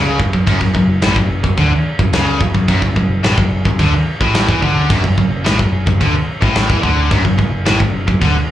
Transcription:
0.00 0.18 C#2 medium
0.00 0.19 C#3 loud
0.00 8.51 F#3 medium
0.00 8.51 C#4 medium
0.00 8.51 G#4 medium
0.00 8.51 A4 medium
0.19 0.33 F#1 medium
0.19 0.33 F#2 medium
0.19 kick loud
0.33 0.46 F#1 medium
0.33 0.45 F#2 medium
0.33 kick medium
0.47 0.60 F#1 medium
0.47 0.60 F#2 loud
0.47 kick loud
0.47 crash medium
0.61 0.74 F#1 medium
0.61 0.73 F#2 medium
0.61 kick medium
0.74 1.01 F#1 medium
0.74 0.97 F#2 medium
0.74 kick medium
1.01 1.15 A1 medium
1.01 1.16 A2 loud
1.01 snare loud
1.01 crash medium
1.16 1.42 F#1 medium
1.16 1.39 F#2 medium
1.16 kick medium
1.44 1.57 F#1 medium
1.44 1.58 F#2 medium
1.44 kick loud
1.57 1.71 D2 loud
1.57 1.71 D3 loud
1.57 kick medium
1.57 crash medium
1.71 muted picked electric bass stroke soft
1.71 muted distorted electric guitar stroke medium
1.71 muted overdriven electric guitar stroke medium
1.99 2.11 F#1 medium
1.99 2.13 F#2 medium
1.99 kick medium
2.12 2.38 C#2 medium
2.12 2.40 C#3 loud
2.12 snare loud
2.12 crash medium
2.41 2.54 F#1 medium
2.41 2.53 F#2 medium
2.41 kick loud
2.54 2.67 F#1 medium
2.54 2.67 F#2 medium
2.54 kick medium
2.68 2.81 F#1 loud
2.68 2.81 F#2 loud
2.68 kick loud
2.68 crash medium
2.82 2.95 F#1 medium
2.82 2.95 F#2 medium
2.82 kick medium
2.96 3.22 F#1 medium
2.96 3.18 F#2 medium
2.96 kick medium
3.23 3.36 A1 loud
3.23 3.37 A2 loud
3.23 snare loud
3.23 crash medium
3.37 3.63 F#1 medium
3.37 3.60 F#2 medium
3.37 kick loud
3.65 3.78 F#1 medium
3.65 3.80 F#2 medium
3.65 kick medium
3.79 3.92 D2 medium
3.79 3.93 D3 loud
3.79 kick medium
3.79 crash medium
3.92 muted picked electric bass stroke soft
3.92 muted overdriven electric guitar stroke medium
3.92 muted distorted electric guitar stroke medium
4.20 4.46 A1 medium
4.20 4.48 A2 loud
4.20 kick loud
4.35 snare loud
4.35 crash medium
4.48 4.61 E2 medium
4.48 4.61 E3 loud
4.48 kick loud
4.62 4.88 D2 loud
4.62 4.89 D3 loud
4.62 kick medium
4.90 5.03 F#1 medium
4.90 5.03 F#2 loud
4.90 kick loud
4.90 crash medium
5.04 5.17 F#1 medium
5.04 5.17 F#2 medium
5.04 kick medium
5.18 5.43 F#1 medium
5.18 5.40 F#2 medium
5.18 kick medium
5.45 5.58 A1 medium
5.45 5.58 A2 loud
5.45 snare loud
5.45 crash medium
5.59 5.85 F#1 medium
5.59 5.81 F#2 medium
5.59 kick loud
5.87 6.00 F#1 medium
5.87 6.01 F#2 medium
5.87 kick loud
6.01 6.14 D2 loud
6.01 6.14 D3 loud
6.01 kick medium
6.01 crash medium
6.15 muted overdriven electric guitar stroke medium
6.15 muted distorted electric guitar stroke medium
6.15 muted picked electric bass stroke soft
6.42 6.68 A1 medium
6.42 6.69 A2 medium
6.42 kick loud
6.55 snare loud
6.55 crash medium
6.70 6.83 E2 loud
6.70 6.82 E3 medium
6.70 kick loud
6.83 7.09 D2 loud
6.83 7.10 D3 loud
6.83 kick medium
7.10 7.24 F#1 medium
7.10 7.23 F#2 loud
7.10 kick loud
7.10 crash medium
7.24 7.38 F#1 medium
7.24 7.36 F#2 medium
7.24 kick medium
7.38 7.65 F#1 medium
7.38 7.61 F#2 medium
7.38 kick medium
7.66 7.80 A1 medium
7.66 7.79 A2 loud
7.66 snare loud
7.66 crash medium
7.79 8.06 F#1 medium
7.79 8.02 F#2 medium
7.79 kick loud
8.07 8.21 F#1 medium
8.07 8.22 F#2 medium
8.07 kick medium
8.21 8.35 D2 loud
8.21 8.35 D3 loud
8.21 kick loud
8.21 crash medium
8.35 muted distorted electric guitar stroke medium
8.35 muted overdriven electric guitar stroke medium
8.35 muted picked electric bass stroke soft

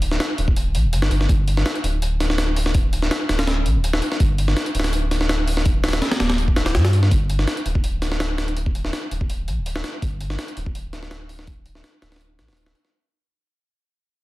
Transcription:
0.00 0.19 D1 loud
0.00 open hi-hat medium
0.11 snare soft
0.20 snare loud
0.20 open hi-hat medium
0.38 0.76 D1 loud
0.38 open hi-hat medium
0.48 kick medium
0.57 open hi-hat medium
0.74 0.86 A#1 medium
0.74 open hi-hat medium
0.84 0.94 D1 loud
0.93 1.09 G1 loud
0.93 open hi-hat medium
1.02 snare loud
1.11 1.27 G1 medium
1.11 open hi-hat medium
1.21 snare soft
1.29 1.64 G1 loud
1.29 kick loud
1.29 open hi-hat medium
1.48 open hi-hat medium
1.57 snare soft
1.66 snare loud
1.66 open hi-hat medium
1.75 closed hi-hat soft
1.84 3.10 D1 loud
1.84 open hi-hat medium
2.02 open hi-hat medium
2.20 snare soft
2.20 open hi-hat medium
2.30 snare medium
2.38 snare loud
2.38 open hi-hat medium
2.57 open hi-hat medium
2.66 snare medium
2.75 kick loud
2.75 open hi-hat medium
2.93 open hi-hat medium
3.02 snare soft
3.11 snare loud
3.11 open hi-hat medium
3.29 3.67 D1 loud
3.29 snare loud
3.29 open hi-hat medium
3.39 snare loud
3.39 open hi-hat medium
3.47 snare loud
3.47 open hi-hat medium
3.66 3.77 A#1 medium
3.66 open hi-hat medium
3.75 4.01 D1 loud
3.84 open hi-hat medium
3.93 snare loud
4.02 open hi-hat medium
4.12 snare soft
4.20 4.55 G1 loud
4.20 kick loud
4.20 open hi-hat medium
4.38 open hi-hat medium
4.48 snare soft
4.57 snare loud
4.57 open hi-hat medium
4.66 closed hi-hat soft
4.75 6.01 D1 loud
4.75 open hi-hat medium
4.80 snare medium
4.80 open hi-hat medium
4.84 snare loud
4.84 open hi-hat medium
4.93 open hi-hat medium
5.11 snare soft
5.11 open hi-hat medium
5.21 snare medium
5.29 snare loud
5.29 open hi-hat medium
5.47 open hi-hat medium
5.57 snare medium
5.65 kick loud
5.65 open hi-hat medium
5.84 snare medium
5.84 open hi-hat medium
5.89 snare medium
5.89 open hi-hat medium
5.93 snare loud
5.93 open hi-hat medium
6.02 snare loud
6.02 open hi-hat medium
6.12 snare loud
6.12 open hi-hat medium
6.20 6.56 D1 loud
6.20 snare loud
6.20 open hi-hat medium
6.30 snare loud
6.30 open hi-hat medium
6.38 open hi-hat medium
6.48 kick medium
6.56 6.77 D1 loud
6.56 snare loud
6.56 open hi-hat medium
6.66 snare loud
6.66 open hi-hat medium
6.75 7.10 G2 loud
6.75 snare loud
6.75 open hi-hat medium
6.85 snare loud
6.85 open hi-hat medium
6.93 open hi-hat medium
7.03 snare soft
7.11 7.46 G1 loud
7.11 kick loud
7.11 open hi-hat medium
7.30 open hi-hat medium
7.39 snare soft
7.47 snare loud
7.47 open hi-hat medium
7.57 closed hi-hat soft
7.66 8.92 D1 loud
7.66 open hi-hat medium
7.75 kick medium
7.84 open hi-hat medium
8.02 snare soft
8.02 open hi-hat medium
8.12 snare medium
8.20 snare loud
8.20 open hi-hat medium
8.38 snare loud
8.38 open hi-hat medium
8.48 closed hi-hat soft
8.57 open hi-hat medium
8.66 kick medium
8.75 open hi-hat medium
8.85 snare soft
8.93 snare loud
8.93 open hi-hat medium
9.11 9.49 D1 loud
9.11 open hi-hat medium
9.21 kick medium
9.30 open hi-hat medium
9.48 9.59 A#1 medium
9.48 open hi-hat medium
9.57 9.83 D1 loud
9.66 open hi-hat medium
9.76 snare loud
9.84 snare loud
9.84 open hi-hat medium
10.02 10.37 G1 loud
10.02 kick loud
10.02 open hi-hat medium
10.21 open hi-hat medium
10.30 snare soft
10.39 snare loud
10.39 open hi-hat medium
10.48 closed hi-hat soft
10.57 11.83 D1 loud
10.57 open hi-hat medium
10.66 kick medium
10.75 open hi-hat medium
10.93 snare soft
10.93 open hi-hat medium
11.03 snare soft
11.11 snare loud
11.11 open hi-hat medium
11.29 open hi-hat medium
11.39 snare medium
11.47 kick loud
11.47 open hi-hat medium
11.66 open hi-hat medium
11.75 snare soft
11.84 snare loud
11.84 open hi-hat medium
12.02 12.40 D1 loud
12.02 snare loud
12.02 open hi-hat medium
12.12 snare medium
12.12 open hi-hat medium
12.16 snare medium
12.16 open hi-hat medium
12.21 open hi-hat medium
12.39 12.50 A#1 medium
12.39 snare medium
12.39 open hi-hat medium
12.48 12.74 D1 loud
12.48 snare medium
12.48 open hi-hat medium
12.53 snare medium
12.53 open hi-hat medium
12.57 open hi-hat medium
12.66 snare loud
12.75 open hi-hat medium
12.85 snare soft

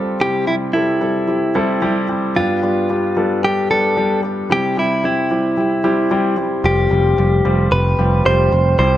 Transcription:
0.00 0.21 G3 medium
0.00 0.21 C4 medium
0.00 0.23 F4 medium
0.00 0.21 G4 medium
0.00 0.15 A4 medium
0.21 0.97 C3 soft
0.21 0.42 G3 medium
0.21 0.42 C4 medium
0.21 0.42 E4 medium
0.21 0.43 G4 medium
0.21 0.46 G4 medium
0.47 0.70 G3 medium
0.47 0.69 C4 medium
0.47 0.55 E4 medium
0.47 0.70 E4 medium
0.47 0.70 G4 medium
0.73 0.96 G3 medium
0.73 0.96 C4 medium
0.73 2.04 E4 medium
0.73 0.96 E4 medium
0.73 0.96 A4 medium
1.01 1.23 G3 medium
1.01 1.23 C4 medium
1.01 1.23 E4 medium
1.01 1.23 A4 medium
1.27 1.50 G3 soft
1.27 1.50 C4 soft
1.27 1.50 E4 soft
1.27 1.50 G4 medium
1.55 1.77 G3 medium
1.55 1.77 C4 medium
1.55 1.77 E4 medium
1.55 1.77 A4 medium
1.82 2.04 G3 medium
1.82 2.04 C4 medium
1.82 2.04 E4 medium
1.82 2.04 G4 medium
2.09 2.31 G3 medium
2.09 2.30 C4 medium
2.09 2.31 E4 medium
2.09 2.31 G4 medium
2.36 3.13 G2 soft
2.36 2.58 G3 medium
2.36 2.58 B3 medium
2.36 2.58 D4 medium
2.36 3.39 F4 medium
2.36 2.58 G4 medium
2.63 2.84 G3 medium
2.63 2.84 B3 medium
2.63 2.84 D4 soft
2.63 2.84 F4 medium
2.89 3.11 G3 medium
2.89 3.11 B3 medium
2.89 3.11 D4 medium
2.89 3.11 G4 medium
3.17 3.38 G3 medium
3.17 3.38 B3 medium
3.17 3.38 D4 medium
3.17 3.38 A4 medium
3.43 3.65 G3 soft
3.43 3.65 B3 soft
3.43 3.65 D4 medium
3.43 3.70 G4 medium
3.43 3.65 A4 medium
3.70 3.92 G3 medium
3.70 3.92 B3 medium
3.70 3.92 D4 medium
3.70 3.92 G4 medium
3.70 4.20 A4 medium
3.97 4.18 G3 medium
3.97 4.19 B3 medium
3.97 4.19 D4 medium
3.97 4.19 G4 medium
4.23 4.45 G3 soft
4.23 4.45 B3 soft
4.23 4.45 D4 soft
4.23 4.45 G4 medium
4.50 5.27 C3 soft
4.50 4.72 G3 medium
4.50 4.72 C4 medium
4.50 4.72 E4 medium
4.50 4.72 G4 medium
4.50 4.79 G4 medium
4.77 4.99 G3 medium
4.77 4.99 C4 medium
4.77 4.99 E4 medium
4.77 5.04 E4 medium
4.77 4.99 G4 medium
5.04 5.25 G3 medium
5.04 5.25 C4 medium
5.04 5.26 E4 medium
5.04 6.35 E4 medium
5.04 5.26 G4 medium
5.31 5.53 G3 medium
5.31 5.52 C4 medium
5.31 5.53 E4 soft
5.31 5.53 G4 medium
5.57 5.79 G3 soft
5.57 5.79 C4 soft
5.57 5.79 E4 soft
5.57 5.79 G4 medium
5.84 6.06 G3 medium
5.84 6.06 C4 medium
5.84 6.06 E4 medium
5.84 6.06 G4 medium
6.11 6.33 G3 medium
6.11 6.33 C4 medium
6.11 6.33 E4 medium
6.11 6.33 G4 medium
6.37 6.59 G3 medium
6.37 6.59 C4 medium
6.37 6.60 E4 medium
6.37 6.59 G4 medium
6.64 6.87 F1 medium
6.64 6.86 G3 medium
6.64 6.86 C4 medium
6.64 6.86 F4 medium
6.64 6.86 G4 medium
6.64 7.71 G4 medium
6.91 7.13 F1 medium
6.91 7.13 G3 medium
6.91 7.13 C4 medium
6.91 7.13 F4 soft
6.91 7.13 G4 medium
7.17 7.40 F1 medium
7.17 7.40 G3 medium
7.17 7.40 C4 soft
7.17 7.40 F4 medium
7.17 7.40 G4 medium
7.45 7.67 F1 medium
7.45 7.67 G3 medium
7.45 7.67 C4 medium
7.45 7.67 F4 medium
7.45 7.67 G4 medium
7.72 7.94 F1 medium
7.72 7.94 G3 soft
7.72 7.94 C4 soft
7.72 7.94 F4 soft
7.72 7.94 G4 medium
7.72 8.26 B4 medium
7.99 8.21 F1 medium
7.99 8.20 G3 medium
7.99 8.20 C4 medium
7.99 8.20 F4 medium
7.99 8.21 G4 medium
8.25 8.48 F1 medium
8.25 8.47 G3 medium
8.25 8.47 C4 medium
8.25 8.47 F4 medium
8.25 8.47 G4 medium
8.25 8.78 C5 medium
8.52 8.75 F1 medium
8.52 8.74 G3 medium
8.52 8.74 C4 soft
8.52 8.74 F4 soft
8.79 8.97 C2 medium
8.79 8.97 C3 soft
8.79 8.97 G3 medium
8.79 8.97 C4 medium
8.79 8.97 E4 medium
8.79 8.97 G4 medium
8.79 8.97 C5 medium

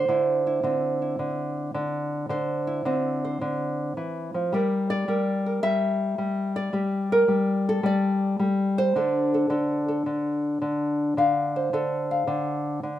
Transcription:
0.00 0.11 C4 soft
0.00 2.12 C5 loud
0.08 0.63 D3 medium
0.08 0.46 E4 soft
0.47 1.01 E4 soft
0.63 1.19 D3 medium
0.63 2.85 C4 soft
1.02 2.66 E4 soft
1.19 1.73 D3 medium
1.74 2.28 D3 medium
2.29 2.84 D3 medium
2.29 3.23 C5 medium
2.67 4.51 E4 medium
2.85 3.40 D3 medium
2.85 4.52 C4 medium
3.25 4.50 C5 medium
3.41 3.96 D3 medium
3.97 4.34 E3 medium
4.34 4.52 F3 medium
4.52 5.08 G3 medium
4.52 6.72 G4 soft
4.52 5.08 A#4 soft
4.52 4.90 D5 soft
4.90 5.62 D5 loud
5.08 5.63 G3 medium
5.08 5.46 A#4 soft
5.46 6.72 A#4 soft
5.63 6.17 G3 medium
5.63 6.55 E5 loud
6.18 6.72 G3 medium
6.56 7.66 D5 medium
6.73 7.27 G3 medium
6.73 7.11 G4 soft
7.12 8.22 A#4 medium
7.28 7.82 G3 medium
7.69 8.40 A4 medium
7.83 8.38 G3 medium
7.83 8.78 D5 medium
8.39 8.95 G3 medium
8.78 10.99 C5 loud
8.95 9.49 D3 medium
8.95 11.59 D4 soft
8.95 9.34 A4 soft
9.34 9.50 A4 soft
9.50 10.06 D3 medium
9.50 9.88 A4 soft
9.88 11.73 A4 soft
10.06 10.60 D3 medium
10.62 11.16 D3 medium
11.17 11.72 D3 medium
11.17 12.11 F5 medium
11.56 12.99 C5 medium
11.73 12.26 D3 medium
11.73 12.99 A4 medium
12.11 12.99 F5 medium
12.27 12.82 D3 medium
12.83 12.99 D3 medium

